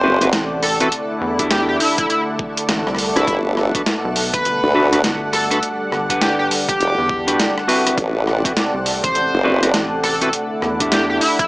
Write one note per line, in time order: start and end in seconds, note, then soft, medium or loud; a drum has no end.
0.00 0.31 F#1 medium
0.00 0.89 C3 medium
0.00 0.89 C4 medium
0.00 0.19 C4 medium
0.00 0.19 E4 medium
0.00 0.19 F#4 medium
0.00 11.48 A4 medium
0.00 0.19 B4 loud
0.00 0.22 C5 loud
0.00 3.27 D5 medium
0.00 0.88 F#5 medium
0.00 3.27 F#5 medium
0.21 0.28 C4 medium
0.21 0.28 E4 medium
0.21 0.28 F#4 medium
0.21 0.28 B4 medium
0.21 cross-stick soft
0.21 closed hi-hat medium
0.33 0.90 A1 loud
0.33 snare loud
0.33 closed hi-hat medium
0.63 0.74 A4 medium
0.63 cross-stick soft
0.63 open hi-hat medium
0.80 0.87 C4 medium
0.80 0.87 E4 medium
0.80 0.87 F#4 medium
0.80 0.88 A4 medium
0.80 0.87 B4 medium
0.80 closed hi-hat medium
0.91 3.25 D3 medium
0.91 5.58 A3 medium
0.91 3.25 E4 medium
0.91 closed hi-hat medium
1.21 1.78 E2 loud
1.39 3.11 D4 medium
1.39 3.11 E4 medium
1.39 3.11 G4 medium
1.39 3.11 A4 medium
1.39 kick medium
1.39 closed hi-hat medium
1.51 1.62 G4 medium
1.51 snare loud
1.51 closed hi-hat medium
1.69 1.76 G4 medium
1.80 1.94 E4 medium
1.80 open hi-hat medium
1.98 2.05 E4 medium
1.98 kick loud
1.98 closed hi-hat medium
2.10 2.21 E4 medium
2.10 closed hi-hat medium
2.39 kick loud
2.57 closed hi-hat medium
2.69 2.84 A1 loud
2.69 snare loud
2.69 closed hi-hat medium
2.87 3.13 C2 loud
2.87 cross-stick soft
2.95 cross-stick soft
2.95 open hi-hat medium
3.04 cross-stick soft
3.16 3.25 C2 loud
3.16 3.70 D4 medium
3.16 3.34 E4 loud
3.16 3.70 F#4 medium
3.16 3.71 A4 medium
3.16 3.70 B4 medium
3.16 cross-stick soft
3.16 closed hi-hat medium
3.27 3.72 G1 loud
3.27 5.60 B2 medium
3.27 10.29 F#5 medium
3.27 kick loud
3.27 closed hi-hat medium
3.57 cross-stick soft
3.75 3.81 D4 medium
3.75 3.81 F#4 medium
3.75 3.81 A4 medium
3.75 3.81 B4 medium
3.75 kick loud
3.75 closed hi-hat medium
3.86 snare loud
3.86 closed hi-hat medium
4.05 4.31 B1 loud
4.14 11.48 D5 medium
4.14 open hi-hat medium
4.33 4.43 G1 loud
4.33 4.92 B4 loud
4.33 11.48 F#5 medium
4.33 kick loud
4.33 closed hi-hat medium
4.45 4.60 G1 loud
4.45 closed hi-hat medium
4.63 5.02 D2 medium
4.74 4.90 D4 medium
4.74 4.90 F#4 medium
4.74 4.90 A4 medium
4.74 4.90 B4 loud
4.92 4.99 D4 medium
4.92 4.99 F#4 medium
4.92 4.99 A4 medium
4.92 4.99 B4 medium
4.92 cross-stick soft
4.92 closed hi-hat medium
5.04 5.61 G1 loud
5.04 snare loud
5.04 closed hi-hat medium
5.33 5.44 A4 medium
5.33 cross-stick soft
5.33 open hi-hat medium
5.50 5.58 D4 medium
5.50 5.58 F#4 medium
5.50 5.58 A4 medium
5.50 5.58 B4 loud
5.50 closed hi-hat medium
5.63 7.96 D3 medium
5.63 7.96 G3 medium
5.63 closed hi-hat medium
5.92 6.49 G1 loud
5.92 cross-stick soft
6.09 7.24 D4 medium
6.09 7.24 G4 medium
6.09 7.24 B4 medium
6.09 7.24 F#5 medium
6.09 kick medium
6.09 closed hi-hat medium
6.21 6.33 G4 medium
6.21 snare loud
6.21 closed hi-hat medium
6.39 6.46 G4 medium
6.51 open hi-hat medium
6.68 7.50 G4 loud
6.68 kick loud
6.68 closed hi-hat medium
6.80 6.95 E1 loud
6.80 closed hi-hat medium
6.98 7.37 E2 medium
7.09 kick loud
7.27 7.38 D4 medium
7.27 7.38 F#4 medium
7.27 7.38 G4 medium
7.27 7.38 B4 loud
7.27 closed hi-hat medium
7.40 snare loud
7.40 closed hi-hat medium
7.58 cross-stick soft
7.68 8.41 C4 medium
7.68 8.41 E4 medium
7.68 8.41 F#4 medium
7.68 8.41 B4 medium
7.68 open hi-hat medium
7.87 cross-stick soft
7.87 closed hi-hat medium
7.98 8.42 A1 medium
7.98 10.31 C3 medium
7.98 10.31 C4 medium
7.98 kick loud
7.98 closed hi-hat medium
8.27 cross-stick soft
8.44 8.52 C4 medium
8.44 8.52 E4 medium
8.44 8.52 F#4 medium
8.44 8.52 B4 medium
8.44 kick loud
8.44 closed hi-hat medium
8.57 snare loud
8.57 closed hi-hat medium
8.74 9.01 C2 loud
8.86 open hi-hat medium
9.04 9.14 A1 medium
9.04 9.63 C5 loud
9.04 kick loud
9.04 closed hi-hat medium
9.15 9.30 A1 loud
9.15 closed hi-hat medium
9.34 9.73 F#1 loud
9.44 9.60 C4 medium
9.44 9.60 E4 medium
9.44 9.60 F#4 medium
9.44 9.60 B4 loud
9.62 9.69 C4 medium
9.62 9.69 E4 medium
9.62 9.69 F#4 medium
9.62 9.69 B4 medium
9.62 cross-stick soft
9.62 closed hi-hat medium
9.74 10.31 A1 loud
9.74 snare loud
9.74 closed hi-hat medium
10.03 10.15 A4 medium
10.03 cross-stick soft
10.03 open hi-hat medium
10.21 10.28 C4 medium
10.21 10.28 E4 medium
10.21 10.28 F#4 medium
10.21 10.29 A4 medium
10.21 10.28 B4 loud
10.21 closed hi-hat medium
10.33 11.48 D3 medium
10.33 11.48 A3 medium
10.33 11.48 E4 medium
10.33 closed hi-hat medium
10.62 11.19 E2 loud
10.62 cross-stick soft
10.80 11.48 D4 medium
10.80 11.48 E4 medium
10.80 11.48 G4 medium
10.80 11.48 A4 medium
10.80 kick medium
10.80 closed hi-hat medium
10.92 11.03 G4 medium
10.92 snare loud
10.92 closed hi-hat medium
11.10 11.17 G4 medium
11.21 11.35 E4 medium
11.21 open hi-hat medium
11.39 11.47 E4 medium
11.39 kick loud
11.39 closed hi-hat medium